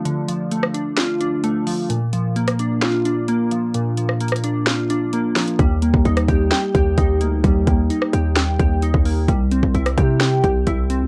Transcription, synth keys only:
Already playing: D3 F3 A3 D4 F4
0.05 D3
0.28 F3
0.52 A3
0.74 D4
0.98 F4
1.21 D4
1.44 A3
1.67 F3
1.90 A#2
2.13 F3
2.36 A#3
2.59 D4
2.82 F4
3.05 D4
3.28 A#3
3.52 F3
3.75 A#2
3.98 F3
4.21 A#3
4.44 D4
4.67 F4
4.90 D4
5.13 A#3
5.36 F3
5.59 G3
5.82 A#3
6.05 D#4
6.28 G4
6.51 G5
6.75 G4
6.98 D#4
7.21 A#3
7.44 G3
7.67 A#3
7.90 D#4
8.13 G4
8.37 G5
8.59 G4
8.82 D#4
9.05 A#3
9.28 G3
9.52 C4
9.74 E4
9.98 G4
10.21 G5
10.44 G4
10.67 E4
10.90 C4

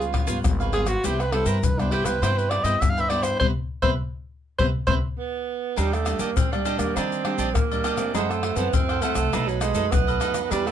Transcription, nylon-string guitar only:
Already playing: C#3 G3 B3 F4
0.28 G3 B3 F4
0.45 G#2
0.73 G3 B3 F4
1.05 C3 G3 B3 E4
1.33 G3 B3 E4
1.64 G2
1.80 G3 B3 E4
2.05 G3 B3 E4
2.23 C3 G3 B3 E4
2.64 G3 B3 E4
2.82 G2
3.10 G3 B3 E4
3.40 G3 B3 C4
3.82 G3 B3 C4
4.59 G3 B3 C4
4.87 G3 B3 C4
5.77 D#3 G3 A#3 D4
6.06 G3 A#3 D4
6.38 A#2
6.53 G3 A#3 D4
6.80 G3 A#3 D4
6.97 D#3
7.25 G3 A#3 D4
7.56 A#2
7.71 G3 A#3 D4
7.97 E3 A3 C4
8.15 F#2
8.57 E3 A3 C4
8.74 F#2
9.03 E3 A3 C4
9.33 B2 F#3 A3 D#4
9.75 F#3 A3 D#4
9.93 F#2
10.21 F#3 A3 D#4
10.52 E3 B3 D4 G4

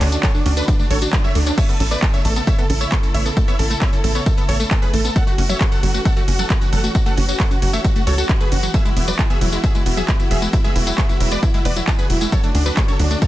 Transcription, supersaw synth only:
0.01 D4
0.12 D4
0.23 A4 C#5
0.34 D4
0.46 D4
0.57 D4 B4
0.68 D4
0.79 D4
0.91 A4 C#5
1.02 D4
1.13 D4
1.24 C#5 E5
1.35 D4
1.46 D4
1.58 C#5 E5
1.69 A4
1.80 A4
1.91 B4 D5
2.02 A4
2.14 C#5 E5
2.25 A4
2.36 A4
2.47 C#5 E5
2.58 A4
2.70 A4
2.81 C#5 E5
2.92 A4
3.03 A4
3.14 C#5 E5
3.25 A4
3.37 A4
3.48 C#5 E5
3.59 A4
3.70 A4
3.81 C#5 E5
3.93 A4
4.04 A4
4.15 A4 C#5
4.26 A4
4.37 A4
4.48 A4 C#5
4.60 A4
4.71 A4
4.82 G#4 B4
4.93 A4
5.04 A4
5.16 A4 F#5
5.27 F#4
5.38 F#4
5.49 C#5 E5
5.60 F#4
5.72 A4 F#5
5.83 F#4
5.94 F#4
6.05 A4 F#5
6.17 F#4
6.28 F#4
6.39 A4 F#5
6.50 F#4
6.61 F#4
6.72 A4 F#5
6.84 F#4
6.95 F#4
7.06 A4 F#5
7.17 F#4
7.29 F#4
7.40 A4 F#5
7.51 F#4
7.62 F#4
7.73 C#5 E5
7.85 F#4
7.96 F#4
8.07 A4 C#5
8.18 F#4
8.29 F#4
8.41 G#4 B4
8.52 F#4
8.63 F#4
8.74 G#4 E5
8.85 E4
8.96 E4
9.08 B4 D5
9.19 E4
9.30 G#4 E5
9.41 E4
9.52 E4
9.64 G#4 E5
9.75 E4
9.86 E4
9.97 G#4 E5
10.08 E4
10.20 E4
10.31 G#4 E5
10.42 E4
10.53 E4
10.64 G#4 E5
10.76 E4
10.87 E4
10.98 G#4 E5
11.09 E4
11.20 E4
11.32 B4 D5
11.43 E4
11.54 E4
11.65 B4 D5
11.76 E4
11.88 E4
11.99 G#4 B4
12.10 E4
12.21 E4
12.32 A4 C#5
12.43 D4
12.55 D4
12.66 D4 B4
12.77 D4
12.88 A4 C#5
12.99 D4
13.11 D4
13.22 A4 C#5

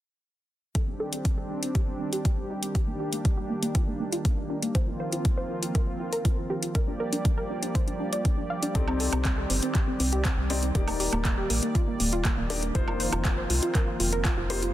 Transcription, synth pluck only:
0.75 A4
0.88 C4
1.00 A4
1.13 C4
1.25 C4
1.38 A4
1.50 C4
1.63 C4
1.75 G4
1.88 C4
2.00 C4
2.13 G4
2.25 C4
2.38 C4
2.50 D#4
2.63 C4
2.75 G4
2.88 A#3
3.00 G4
3.13 A#3
3.25 A#3
3.37 G4
3.50 A#3
3.63 A#3
3.75 F4
3.87 A#3
4.00 A#3
4.12 F4
4.25 A#3
4.37 A#3
4.50 D4
4.62 A#3
4.75 C5
4.88 F4
5.00 C5
5.13 F4
5.25 F4
5.37 C5
5.50 F4
5.63 F4
5.75 A#4
5.88 F4
6.00 F4
6.13 A#4
6.25 F4
6.38 F4
6.50 G4
6.63 F4
6.75 A#4
6.88 D4
7.00 A#4
7.13 D4
7.25 D4
7.38 A#4
7.50 D4
7.63 D4
7.75 C5
7.88 D4
8.00 D4
8.13 D5
8.25 D4
8.38 D4
8.50 F5
8.63 D4
8.75 A4
8.88 C4
9.00 A4
9.13 C4
9.25 C4
9.38 A4
9.50 C4
9.63 C4
9.75 G4
9.88 C4
10.00 C4
10.13 G4
10.25 C4
10.38 C4
10.50 D#4
10.62 C4
10.75 G4
10.87 A#3
11.00 G4
11.12 A#3
11.25 A#3
11.38 G4
11.50 A#3
11.63 A#3
11.75 F4
11.88 A#3
12.00 A#3
12.13 F4
12.25 A#3
12.38 A#3
12.50 D4
12.63 A#3
12.75 C5
12.88 F4
13.00 C5
13.13 F4
13.25 F4
13.38 C5
13.50 F4
13.63 F4
13.75 A#4
13.88 F4
14.00 F4
14.13 A#4
14.25 F4
14.38 F4
14.50 G4
14.63 F4

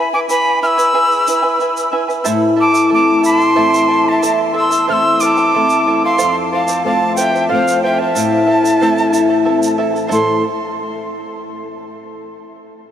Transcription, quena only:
0.14 D6
0.30 B5
0.63 E6 F6
2.61 D6
2.94 D6
3.25 B5
3.39 C6
4.09 A5
4.56 E6
4.89 E6 F6
5.20 D6
6.05 C6
6.53 A5
6.85 A5
7.16 G5
7.49 F5
7.83 G5
7.99 A5
10.12 C6

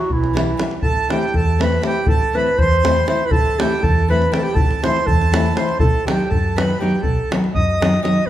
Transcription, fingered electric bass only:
0.10 B1
0.82 A1
1.34 E2
2.07 A1
2.59 E2
3.31 A1
3.83 E2
4.55 A1
5.07 E2
5.79 B1
6.31 F#2
7.03 B1
7.55 F#2

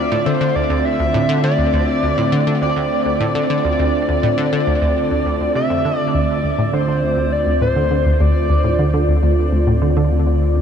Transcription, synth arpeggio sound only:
0.12 A2
0.26 D3
0.41 D3
0.56 D2
0.70 D2
1.00 D2
1.14 A2
1.29 D3
1.44 D3
1.58 D2
1.73 D2
2.03 D2
2.18 A2
2.32 D3
2.47 D3
2.62 D2
2.76 D2
3.06 D2
3.21 A2
3.35 D3
3.50 D3
3.65 D2
3.79 D2
4.09 D2
4.23 A2
4.38 D3
4.53 D3
4.67 D2
4.82 D2
5.11 D2
5.26 D2
5.41 D2
5.55 C3
5.70 F2
5.85 D3
6.14 D2
6.44 D2
6.59 A2
6.73 D3
6.88 D3
7.03 D2
7.17 D2
7.46 D2
7.61 A2
7.76 D3
7.91 D3
8.06 D2
8.20 D2
8.50 D2
8.64 A2
8.79 D3
8.94 D3
9.08 D2
9.23 D2
9.52 D2
9.67 A2
9.82 D3
9.97 D3
10.11 D2
10.26 D2
10.56 D2

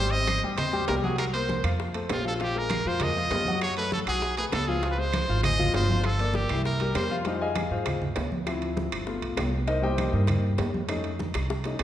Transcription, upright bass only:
Already playing: G#1
0.42 D#2
0.88 C2
1.63 F2
2.09 A#1
2.85 F2
3.30 F#2
4.06 B1
4.52 C#2
5.28 G#1
5.73 G1
6.50 C2
6.95 F2
7.71 G#2
8.16 D2
8.92 G1
9.22 B1
9.37 C2
10.13 G2
10.58 F2
11.34 C2
11.79 A#1

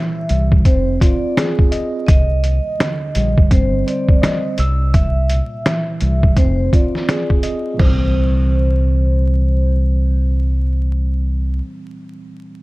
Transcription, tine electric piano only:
Already playing: C2 A#2 E3 E6
0.30 G3
0.66 C4
1.01 F4
1.37 G#4
1.72 D#5
2.08 C2
2.43 D#2
2.79 D3
3.16 G3
3.52 C4
3.87 C5
4.22 D#5
4.60 E6
4.94 C2
5.31 A#2
5.67 E3
6.02 G3
6.37 C4
6.73 F4
7.09 G#4
7.43 D#5
7.73 A#2 E3
7.81 G3 C4

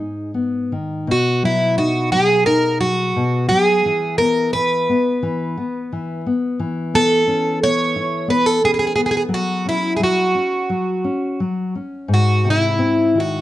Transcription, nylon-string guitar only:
Already playing: G#2 D#4
0.34 B3
0.72 D#3
1.07 B2
1.43 F#3
1.78 D#4
2.12 F#3
2.47 D#4
2.81 F#3
3.16 B2
3.50 F#3
3.86 E3
4.19 B3
4.54 E3
4.89 B3
5.23 E3
5.57 B3
5.93 E3
6.27 B3
6.60 E3
6.94 B3
7.28 C#4
7.63 B3
7.96 E4
8.28 B3
8.64 C#4
8.96 B3
9.29 F#3
9.66 C#4
9.99 F#3
10.35 C#4
10.70 F#3
11.04 C#4
11.40 F#3
11.75 C#4
12.08 G#2
12.44 C3
12.79 C4
13.15 D#3

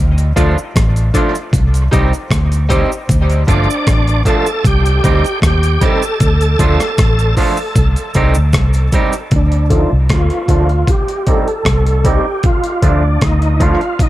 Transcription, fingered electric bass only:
0.00 D2
0.37 D2
0.76 A1
1.53 C2
1.93 C2
2.31 D2
3.10 D2
3.48 G1
3.88 A1
4.65 C2
5.05 D2
5.43 D#2
6.21 D2
6.60 D2
6.99 A1
7.76 C2
8.16 C2
8.37 D2
8.54 C2
9.32 D2
9.93 C2
10.10 D2
10.49 D2
11.65 C2
12.83 D2
13.22 D2

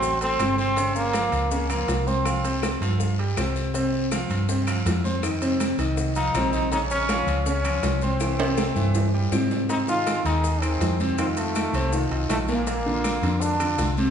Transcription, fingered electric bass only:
Already playing: A1
0.39 G1
1.32 C#2
1.88 C2
2.81 G2
3.37 C2
4.30 G2
4.85 F2
5.78 C2
6.34 A#1
7.27 C#2
7.83 C2
8.76 G2
9.31 G#2
10.25 D#2
10.81 F2
11.73 C2
12.11 C2
12.29 A#1
13.22 F2
13.78 C2

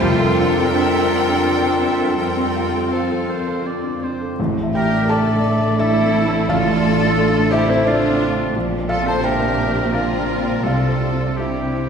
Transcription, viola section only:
0.03 C4 F4
0.38 D4
0.73 E5
1.09 F4
1.45 C4 D4
1.81 E5
2.17 C4 F4
4.74 G4
5.10 A4
5.80 E4
6.49 F4
7.51 E4
7.69 C4
7.86 D4
8.90 F4
9.06 A4
9.24 G4
9.94 F4
10.64 F4
11.38 E4

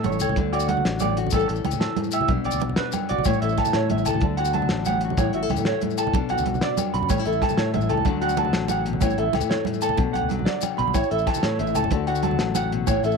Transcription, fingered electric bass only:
0.05 A1
0.20 C#2
0.29 C#2
0.36 D2
0.85 A1
1.32 A1
1.49 A1
1.65 C#2
1.73 A2
2.29 B1
2.45 B1
2.53 D2
2.62 B1
3.11 B1
3.18 B1
3.26 A1
3.42 A1
3.74 A2
3.90 A1
4.06 C#2
4.14 A1
4.21 D2
4.71 A1
5.17 A1
5.34 A1
5.50 C#2
5.58 A2
6.13 B1
6.31 B1
6.39 D2
6.46 B1
6.94 B1
7.01 F#2
7.10 A1
7.26 A1
7.58 A2
7.74 A1
7.91 C#2
8.00 C#2
8.05 D2
8.54 A1
9.02 A1
9.18 A1
9.33 C#2
9.41 A2
9.98 B1
10.14 B1
10.23 D2
10.31 B1
10.79 B1
10.87 B1
10.95 A1
11.11 A1
11.44 A2
11.59 A1
11.75 C#2
11.83 F#1
11.91 D2
12.39 A1
12.88 A1
13.03 A1

